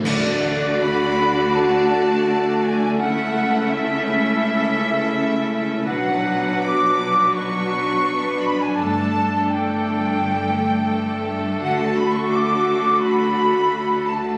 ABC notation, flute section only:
X:1
M:4/4
L:1/16
Q:1/4=84
K:Dlyd
V:1 name="Flute section"
d4 b4 a6 g2 | f4 e12 | f4 d'4 c'6 b g | a4 =g12 |
f a b c' d'4 b6 a2 |]